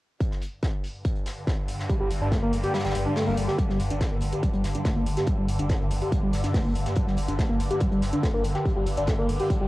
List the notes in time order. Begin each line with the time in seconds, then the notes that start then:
0.20 G2 D3, kick, closed hi-hat
0.31 snare
0.42 closed hi-hat, open hi-hat
0.63 kick, snare, closed hi-hat
0.84 closed hi-hat, open hi-hat
1.05 kick, closed hi-hat
1.16 closed hi-hat
1.26 snare, closed hi-hat, open hi-hat
1.47 kick, snare, closed hi-hat
1.68 closed hi-hat, open hi-hat
1.79 snare
1.89 G3, kick, closed hi-hat
2.00 G1 G3
2.11 G1, closed hi-hat, open hi-hat
2.21 G1 D4
2.32 A3, kick, snare, closed hi-hat
2.42 G1 A#3
2.53 G1, closed hi-hat, open hi-hat
2.64 G4, open hi-hat
2.74 G3, snare, closed hi-hat, swell
2.79 snare, closed hi-hat
2.85 G1 G3, snare, closed hi-hat
2.90 snare, closed hi-hat
2.95 G1, closed hi-hat, open hi-hat
3.06 D4
3.16 A3, snare, open hi-hat
3.27 G1 A#3
3.37 G1, closed hi-hat, open hi-hat
3.48 G4, snare
3.58 G2 D3 G3, kick, closed hi-hat
3.69 G1 G3, snare
3.80 G1, closed hi-hat, open hi-hat
3.90 G1 D4, closed hi-hat
4.01 A3, kick, snare, closed hi-hat
4.12 G1 A#3
4.21 G1, closed hi-hat, open hi-hat
4.33 G4, closed hi-hat
4.43 G3, kick, closed hi-hat
4.54 G1 G3, closed hi-hat
4.64 G1, snare, closed hi-hat, open hi-hat
4.75 D4, closed hi-hat
4.85 A3, kick, snare, closed hi-hat
4.96 G1 A#3
5.06 G1, closed hi-hat, open hi-hat
5.17 G4, snare, closed hi-hat
5.27 G3, kick, closed hi-hat
5.38 G1 G3
5.49 G1, closed hi-hat, open hi-hat
5.59 G1 D4, closed hi-hat
5.69 A3, kick, snare, closed hi-hat
5.80 G1 A#3
5.91 G1, closed hi-hat, open hi-hat
6.02 G4, open hi-hat
6.12 G3, kick, closed hi-hat
6.23 G1 G3
6.33 G1, snare, closed hi-hat, open hi-hat
6.44 D4, snare, closed hi-hat
6.54 A3, kick, snare, closed hi-hat, open hi-hat
6.65 G1 A#3
6.75 G1, closed hi-hat, open hi-hat
6.86 G4, snare, closed hi-hat
6.96 G3, kick, closed hi-hat
7.07 G1 G3, snare
7.17 G1, closed hi-hat, open hi-hat
7.28 G1 D4, closed hi-hat
7.39 A3, kick, snare, closed hi-hat
7.49 G1 A#3
7.60 G1, closed hi-hat, open hi-hat
7.70 G4, closed hi-hat
7.80 G3, kick, closed hi-hat
7.92 G1 G3, closed hi-hat
8.02 G1, snare, closed hi-hat, open hi-hat
8.13 D4, closed hi-hat
8.23 A3, kick, snare, closed hi-hat
8.34 G1 A#3
8.44 G1, closed hi-hat, open hi-hat
8.55 G4, snare, closed hi-hat
8.66 G3, kick, closed hi-hat
8.76 G1 G3
8.86 G1, closed hi-hat, open hi-hat
8.97 G1 D4, closed hi-hat
9.07 A3, kick, snare, closed hi-hat
9.18 G1 A#3
9.29 G1, closed hi-hat, open hi-hat
9.40 G4, open hi-hat
9.50 G3, kick, closed hi-hat
9.61 G1 G3